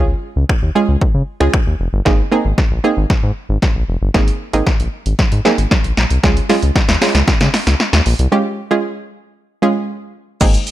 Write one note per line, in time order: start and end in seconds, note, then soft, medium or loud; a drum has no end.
0.00 0.14 C#2 loud
0.00 0.55 G#3 medium
0.00 0.55 C#4 medium
0.00 0.55 F4 medium
0.00 0.55 G#4 loud
0.36 0.44 C#2 loud
0.49 finger snap loud
0.49 kick loud
0.62 0.71 D#2 medium
0.75 1.24 G#3 medium
0.75 1.24 C#4 medium
0.75 1.24 F4 medium
0.75 1.24 G#4 loud
0.88 0.97 C#2 medium
1.01 1.07 C#3 soft
1.01 kick loud
1.14 1.23 C#3 medium
1.40 1.49 C#2 medium
1.40 1.89 G#3 medium
1.40 1.89 C#4 medium
1.40 1.89 F4 medium
1.40 1.89 G#4 medium
1.40 finger snap medium
1.54 finger snap loud
1.54 kick loud
1.67 1.75 D#2 medium
1.80 1.88 F1 medium
1.93 2.01 G1 loud
2.05 2.22 G#1 loud
2.05 2.25 A#3 medium
2.05 2.25 C4 medium
2.05 2.25 D#4 medium
2.05 2.25 G#4 loud
2.05 kick loud
2.05 snare medium
2.32 2.70 A#3 medium
2.32 2.71 C4 medium
2.32 2.71 D#4 medium
2.32 2.71 G#4 medium
2.45 2.53 G#1 medium
2.58 kick loud
2.58 snare medium
2.71 2.79 A#1 medium
2.84 3.61 A#3 medium
2.84 3.61 C4 medium
2.84 3.61 D#4 medium
2.84 3.61 G#4 loud
2.97 3.05 G#1 medium
3.10 3.15 G#2 soft
3.10 kick loud
3.10 snare medium
3.23 3.31 G#2 loud
3.49 3.57 G#1 medium
3.62 kick loud
3.62 snare medium
3.75 3.84 A#1 medium
3.88 3.97 F1 medium
4.02 4.10 G1 medium
4.14 4.31 G#1 loud
4.14 4.44 A#3 medium
4.14 4.44 C4 medium
4.14 4.44 D#4 medium
4.14 4.44 G#4 loud
4.14 kick loud
4.14 snare medium
4.28 closed hi-hat medium
4.53 4.62 G#1 loud
4.53 5.21 A#3 medium
4.53 5.21 C4 medium
4.53 5.21 D#4 medium
4.53 5.21 G#4 medium
4.53 closed hi-hat medium
4.67 kick loud
4.67 snare medium
4.80 4.88 A#1 medium
4.80 closed hi-hat medium
5.06 5.14 G#1 medium
5.06 closed hi-hat medium
5.19 5.24 G#2 soft
5.19 kick loud
5.19 snare medium
5.32 5.40 G#2 loud
5.32 closed hi-hat medium
5.45 6.03 A#3 medium
5.45 6.03 C4 medium
5.45 6.03 D#4 medium
5.45 6.03 G#4 loud
5.45 snare medium
5.58 5.66 G#1 medium
5.58 closed hi-hat medium
5.71 kick loud
5.71 snare medium
5.84 5.92 A#1 medium
5.84 closed hi-hat medium
5.97 6.05 A#1 loud
5.97 snare medium
6.10 6.19 C2 medium
6.10 closed hi-hat medium
6.23 6.40 C#2 loud
6.23 6.43 G#3 medium
6.23 6.43 C#4 medium
6.23 6.43 F4 medium
6.23 6.43 G#4 loud
6.23 kick loud
6.23 snare medium
6.37 closed hi-hat medium
6.49 6.88 G#3 medium
6.49 6.88 C#4 medium
6.49 6.88 F4 medium
6.49 6.88 G#4 loud
6.49 snare medium
6.49 open hi-hat medium
6.62 6.71 C#2 medium
6.62 closed hi-hat medium
6.76 kick loud
6.76 snare loud
6.89 6.97 D#2 medium
6.89 snare loud
6.89 closed hi-hat medium
7.01 7.79 G#3 medium
7.01 7.79 C#4 medium
7.01 7.79 F4 medium
7.01 7.79 G#4 loud
7.01 snare loud
7.01 open hi-hat medium
7.15 7.23 C#2 medium
7.15 snare loud
7.15 closed hi-hat medium
7.28 7.33 C#3 medium
7.28 kick loud
7.28 snare loud
7.41 7.49 C#3 loud
7.41 snare loud
7.41 closed hi-hat medium
7.54 snare loud
7.54 open hi-hat medium
7.67 7.75 C#2 medium
7.67 snare loud
7.67 closed hi-hat medium
7.80 snare loud
7.93 8.01 D#2 medium
7.93 snare loud
7.93 closed hi-hat medium
8.06 8.14 A#1 medium
8.06 open hi-hat medium
8.19 8.27 C2 medium
8.19 closed hi-hat medium
8.32 8.61 G#3 medium
8.32 8.61 C#4 medium
8.32 8.61 F4 medium
8.32 8.61 G4 loud
8.71 9.39 G#3 medium
8.71 9.39 C#4 medium
8.71 9.39 F4 medium
8.71 9.39 G#4 loud
9.62 10.20 G#3 medium
9.62 10.20 C#4 medium
9.62 10.20 F4 medium
9.62 10.21 G#4 loud
10.41 10.57 G#1 loud
10.41 10.71 G#3 medium
10.41 10.71 A#3 medium
10.41 10.71 C4 medium
10.41 10.71 D#4 medium
10.41 10.71 G#4 loud
10.41 kick loud
10.41 crash loud
10.41 shaker medium
10.54 closed hi-hat medium
10.54 shaker medium
10.67 open hi-hat medium
10.67 shaker medium